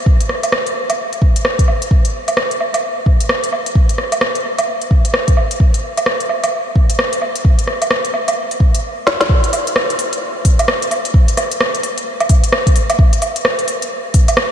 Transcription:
0.06 kick
0.21 closed hi-hat
0.29 cross-stick
0.43 closed hi-hat, low woodblock
0.52 cross-stick
0.67 closed hi-hat
0.90 closed hi-hat, low woodblock
1.13 closed hi-hat
1.22 kick
1.36 closed hi-hat
1.45 cross-stick
1.59 kick, closed hi-hat
1.68 low woodblock
1.82 closed hi-hat
1.91 kick
2.05 closed hi-hat
2.28 closed hi-hat, low woodblock
2.37 cross-stick
2.51 closed hi-hat
2.60 low woodblock
2.74 closed hi-hat, low woodblock
3.06 kick
3.20 closed hi-hat
3.29 cross-stick
3.44 closed hi-hat
3.52 low woodblock
3.66 closed hi-hat
3.75 kick
3.89 closed hi-hat
3.98 cross-stick
4.12 closed hi-hat, low woodblock
4.21 cross-stick
4.35 closed hi-hat
4.58 closed hi-hat, low woodblock
4.81 closed hi-hat
4.91 kick
5.05 closed hi-hat
5.14 cross-stick
5.28 kick, closed hi-hat
5.37 low woodblock
5.51 closed hi-hat
5.60 kick
5.74 closed hi-hat
5.98 closed hi-hat, low woodblock
6.06 cross-stick
6.20 closed hi-hat
6.29 low woodblock
6.44 closed hi-hat, low woodblock
6.76 kick
6.90 closed hi-hat
6.99 cross-stick
7.13 closed hi-hat
7.22 low woodblock
7.36 closed hi-hat
7.45 kick
7.59 closed hi-hat
7.68 cross-stick
7.82 closed hi-hat, low woodblock
7.91 cross-stick
8.05 closed hi-hat
8.14 low woodblock
8.28 closed hi-hat, low woodblock
8.51 closed hi-hat
8.60 kick
8.74 closed hi-hat
9.07 snare
9.21 snare
9.29 kick
9.44 closed hi-hat
9.53 open hi-hat, low woodblock
9.67 closed hi-hat
9.76 cross-stick
9.90 closed hi-hat
9.99 open hi-hat
10.13 closed hi-hat
10.45 kick, open hi-hat
10.59 closed hi-hat, low woodblock
10.68 cross-stick
10.82 closed hi-hat
10.91 open hi-hat, low woodblock
11.05 closed hi-hat
11.14 kick
11.28 closed hi-hat
11.37 cross-stick, open hi-hat, low woodblock
11.52 closed hi-hat
11.61 cross-stick
11.75 closed hi-hat
11.83 open hi-hat
11.98 closed hi-hat
12.20 closed hi-hat, low woodblock
12.29 kick, open hi-hat
12.44 closed hi-hat
12.52 cross-stick
12.67 kick, closed hi-hat
12.76 open hi-hat
12.90 closed hi-hat, low woodblock
12.99 kick
13.13 closed hi-hat
13.22 open hi-hat, low woodblock
13.36 closed hi-hat
13.45 cross-stick
13.59 closed hi-hat
13.68 open hi-hat
13.82 closed hi-hat
14.14 kick, open hi-hat
14.28 closed hi-hat, low woodblock
14.37 cross-stick

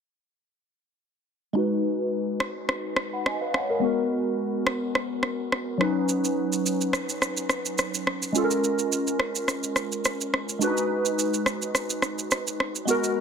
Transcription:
1.53 G#3 D#4 F#4
1.58 B4
2.40 cross-stick
2.69 cross-stick
2.96 cross-stick
3.13 F#5 B5
3.26 D#5 G#5, cross-stick
3.41 B4 F5
3.54 C#5 F#5, cross-stick
3.69 A#4 D#5
3.80 G#3 B3 F#4
3.85 A#4
4.67 cross-stick
4.95 cross-stick
5.23 cross-stick
5.52 cross-stick
5.78 F#3 C#4 D#4, cross-stick
5.83 B4
6.09 shaker
6.25 shaker
6.53 shaker
6.66 shaker
6.81 shaker
6.93 cross-stick, shaker
7.09 shaker
7.22 cross-stick, shaker
7.37 shaker
7.49 cross-stick, shaker
7.66 shaker
7.78 cross-stick, shaker
7.94 shaker
8.07 cross-stick
8.22 shaker
8.33 G#3 C#4 F4, shaker
8.38 A4
8.44 A#4
8.51 shaker
8.64 shaker
8.79 shaker
8.92 shaker
9.07 shaker
9.20 cross-stick
9.35 shaker
9.48 cross-stick, shaker
9.63 shaker
9.76 cross-stick, shaker
9.92 shaker
10.05 cross-stick, shaker
10.21 shaker
10.34 cross-stick
10.49 shaker
10.59 G#3 D4 F#4, shaker
10.64 D#4 B4
10.77 shaker
11.05 shaker
11.19 shaker
11.34 shaker
11.46 cross-stick, shaker
11.62 shaker
11.75 cross-stick, shaker
11.90 shaker
12.02 cross-stick, shaker
12.19 shaker
12.31 cross-stick, shaker
12.47 shaker
12.60 cross-stick
12.76 shaker
12.85 G#3 B3 F#4, shaker
12.90 A#4
13.04 shaker

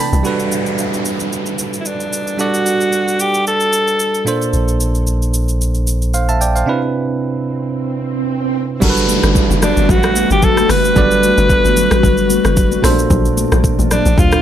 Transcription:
Already playing: C3 E3 C4 D4 E4 B4 D5 G5 A5 B5
0.13 C2, shaker
0.23 G3 D4 F#4 A4 B4, downlifter, shaker
0.40 shaker
0.52 shaker
0.66 shaker
0.78 shaker
0.94 shaker
1.05 shaker
1.20 shaker
1.33 shaker
1.46 shaker
1.59 shaker
1.73 shaker
1.80 E4
1.85 D4, shaker
2.00 shaker
2.13 shaker
2.27 shaker
2.38 G3 D4 F#4 A4 D5, shaker
2.54 shaker
2.66 shaker
2.81 shaker
2.93 shaker
3.08 shaker
3.20 G4, shaker
3.34 shaker
3.47 A4, shaker
3.60 shaker
3.73 shaker
3.88 shaker
4.00 shaker
4.15 shaker
4.25 A#2 A#3 D4 A4 C5, shaker
4.42 shaker
4.53 A#1, shaker
4.68 shaker
4.80 shaker
4.95 shaker
5.07 shaker
5.22 shaker
5.34 shaker
5.48 shaker
5.61 shaker
5.75 shaker
5.87 shaker
6.02 shaker
6.14 C5 F5, shaker
6.29 E5 A5, shaker
6.41 D5 G5, shaker
6.56 C5 F5, shaker
6.66 C3 C4 D4 E4 B4, swell
8.80 G1 G3 A3 B3 D4 F#4 A4 A#4, kick, crash, downlifter, low conga, shaker
8.90 B4
8.97 shaker
9.09 high conga, shaker
9.23 G1, cross-stick, shaker
9.35 kick, shaker
9.50 F#1, high conga, shaker
9.62 D4, cross-stick, low conga, shaker
9.77 G1, shaker
9.89 A1 F#4, kick, low conga, shaker
10.03 cross-stick, shaker
10.16 high conga, shaker
10.31 G1 G4, shaker
10.42 A4, kick, low conga, shaker
10.57 cross-stick, high conga, shaker
10.69 F#1 B4, cross-stick, open hi-hat, shaker
10.85 shaker
10.95 G1 G3 D4 F#4 A4 D5, kick, low conga, shaker
11.11 shaker
11.23 high conga, shaker
11.38 G1, shaker
11.50 kick, shaker
11.64 G1, high conga, shaker
11.76 low conga, shaker
11.91 A1, cross-stick, shaker
12.03 G1, kick, low conga, shaker
12.17 shaker
12.30 high conga, shaker
12.45 F#1, cross-stick, shaker
12.57 kick, low conga, shaker
12.72 high conga, shaker
12.82 A#1 A#2 C3 A#3 C4 D4 A4 C5, cross-stick, open hi-hat, shaker
12.90 D4
12.99 shaker
13.10 A#1, kick, low conga, shaker
13.25 shaker
13.37 high conga, shaker
13.52 A#1, cross-stick, shaker
13.64 kick, shaker
13.79 A1, high conga, shaker
13.91 D4, cross-stick, low conga, shaker
14.06 A#1, shaker
14.17 D2 F4, kick, low conga, shaker
14.32 cross-stick, shaker

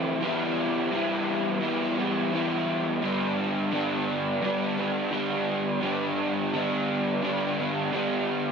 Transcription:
Already playing: E3 A3 C4 E4
0.21 E3 G3 B3 E4
0.91 E3 G3 B3 E4
1.61 E3 G3 B3 E4
1.97 G3 B3 E4
2.32 E3 G3 B3 E4
3.02 G2 D3 G3 B3 D4
3.71 D3 G3 B3 D4
4.42 G2 D3 G3 B3 D4
4.77 G3 B3 D4
5.11 D3 G3 B3 D4
5.80 G2 D3 G3 B3 D4
6.53 D3 G3 B3 D4
7.22 G2 D3 G3 B3 D4
7.57 G3 B3 D4
7.92 D3 G3 B3 D4

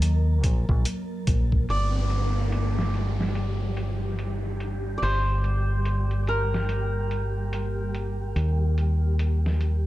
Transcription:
Already playing: D#2 F#3 A#3 A#4 D#5 A6
0.02 closed hi-hat
0.44 A#1, kick, closed hi-hat
0.69 A#1, kick
0.85 closed hi-hat
1.27 A#1, kick, closed hi-hat
1.52 kick
1.69 G1 G3 A#3 G4 A#4 D5, closed hi-hat, downlifter
2.10 closed hi-hat
2.52 closed hi-hat
2.79 snare
2.94 closed hi-hat
3.21 snare
3.35 closed hi-hat
3.77 closed hi-hat
4.19 closed hi-hat
4.60 closed hi-hat
4.98 D5
5.02 G1 C5, open hi-hat
5.44 closed hi-hat
5.85 closed hi-hat
6.11 closed hi-hat
6.27 A#4, closed hi-hat
6.54 snare
6.69 closed hi-hat
7.11 closed hi-hat
7.53 closed hi-hat
7.95 closed hi-hat
8.36 D#2, closed hi-hat
8.78 closed hi-hat
9.19 closed hi-hat
9.46 snare
9.61 closed hi-hat

